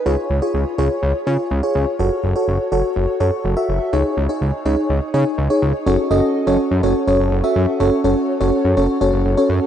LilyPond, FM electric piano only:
\new Staff \with { instrumentName = "FM electric piano" } { \time 4/4 \key fis \dorian \tempo 4 = 124 <eis' gis' cis''>8 r16 <eis' gis' cis''>8 r16 <eis' gis' cis''>8. r16 <eis' gis' cis''>8 r16 <eis' gis' cis''>8 r16 | <fis' a' cis''>8 r16 <fis' a' cis''>8 r16 <fis' a' cis''>8. r16 <fis' a' cis''>8 r16 <fis' a' e''>8 r16 | <dis' gis' cis''>8 r16 <dis' gis' cis''>8 r16 <dis' gis' cis''>8. r16 <dis' gis' cis''>8 r16 <dis' gis' cis''>8 r16 | <cis' fis' a' cis''>8 <cis' fis' a' dis''>8 r16 <cis' fis' a' cis''>8 r16 <cis' fis' a' cis''>8 <cis' fis' a' cis''>8 r16 <cis' fis' a' e''>8 r16 |
<cis' fis' a' cis''>8 <cis' fis' a' cis''>8 r16 <cis' fis' a' cis''>8 r16 <cis' fis' a' cis''>8 <cis' fis' a' cis''>8 r16 <cis' fis' a' cis''>8 r16 | }